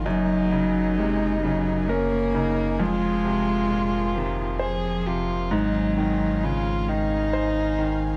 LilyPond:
<<
  \new Staff \with { instrumentName = "String section" } { \time 3/4 \key aes \mixolydian \tempo 4 = 66 << { <aes' bes'>2.~ | <aes' bes'>2. | <aes' f''>2. | } \\ { bes2. | c'2.~ | c'2. | } >> }
  \new Staff \with { instrumentName = "Violin" } { \time 3/4 \key aes \mixolydian ees'2 des'8 ees'8 | f'2 aes'8 f'8 | ees'8 ees'8 f'8 ees'4. | }
  \new Staff \with { instrumentName = "Cello" } { \clef bass \time 3/4 \key aes \mixolydian ges4 aes8 ges8 bes4 | aes4. ees8 f4 | ges4 aes8 r4. | }
  \new Staff \with { instrumentName = "Grand piano" } { \clef bass \time 3/4 \key aes \mixolydian ges,8 des8 c8 des8 bes'8 des8 | f,8 c8 bes,8 c8 c''8 c8 | aes,8 ees8 des8 ees8 c''8 ees8 | }
  \new Staff \with { instrumentName = "Sub bass" } { \clef bass \time 3/4 \key aes \mixolydian ges,,2. | f,,2. | aes,,2. | }
>>